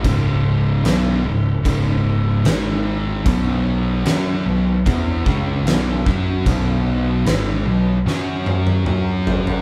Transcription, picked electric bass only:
X:1
M:4/4
L:1/8
Q:1/4=75
K:Bmix
V:1 name="Picked electric bass" clef=bass
C,,,2 B,,, C,,, C,,,2 G,,,2 | B,,,2 F,, B,,, E,, C,, B,,, F,, | B,,,2 G,,, B,,, F,,2 F,,2 |]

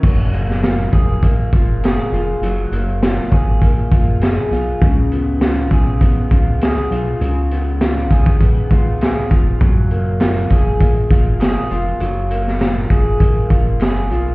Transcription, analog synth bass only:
X:1
M:4/4
L:1/16
Q:1/4=100
K:Gb
V:1 name="Analog synth bass" clef=bass
G,,,6 F,,,3 z G,,,4 F,,,2 | G,,,2 G,,,4 A,,,3 z G,,,4 C,,2 | D,,6 C,,3 z D,,4 C,,2 | D,,6 D,,3 z D,,4 F,,,2 |
G,,,6 F,,,3 z G,,,4 F,,,2 | G,,,6 G,,,3 z G,,,4 C,,2 |]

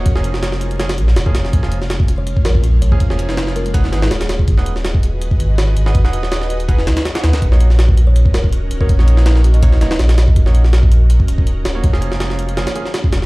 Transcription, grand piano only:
X:1
M:4/4
L:1/16
Q:"Swing 16ths" 1/4=163
K:Ebm
V:1 name="Grand piano"
z [F,B,DA]6- [F,B,DA] [F,B,DA] z4 [F,B,DA]3- | [F,B,DA] [F,B,DA]2 z12 [F,B,DA] | z [F,B,DA]6- [F,B,DA] [EAcg] z [EAcg] z4 z | z [EAcg]2 z12 [EAcg] |
z [EAcg]6- [EAcg] [EAcg] z4 [EAcg]3 | z [B,EGd]2 z12 [B,EGd] | z [B,EGd]6- [B,EGd] [B,EGd] z [B,EGd] z4 z | z [B,EGd]2 z12 [B,EGd] |
z [F,B,DA]6- [F,B,DA] [F,B,DA] z [F,B,DA] z4 z |]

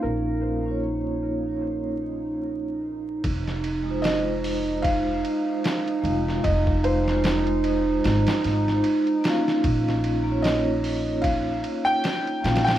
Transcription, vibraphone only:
X:1
M:4/4
L:1/16
Q:"Swing 16ths" 1/4=75
K:Fm
V:1 name="Vibraphone"
[B,DFf]3 [B,DFd]8- [B,DFd]3 z2 | z3 [A,EFc]8- [A,EFc]3 [A,EFf]2- | [A,EFf]3 [A,EFc]8- [A,EFc]3 [B,DFf]2- | [B,DFf]3 [B,DFd]8- [B,DFd]3 [B,DFf]2 |]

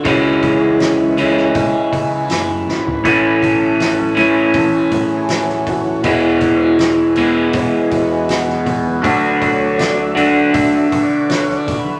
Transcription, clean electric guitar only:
X:1
M:4/4
L:1/8
Q:1/4=80
K:Emix
V:1 name="Clean electric guitar" clef=bass
[C,E,G,CE]3 [C,E,G,CE]4- [C,E,G,CE] | [A,,E,A,CE]3 [A,,E,A,CE]4- [A,,E,A,CE] | [E,,B,,E,G,B,E]3 [E,,B,,E,G,B,E]4- [E,,B,,E,G,B,E] | [D,A,DF]3 [D,A,DF]4- [D,A,DF] |]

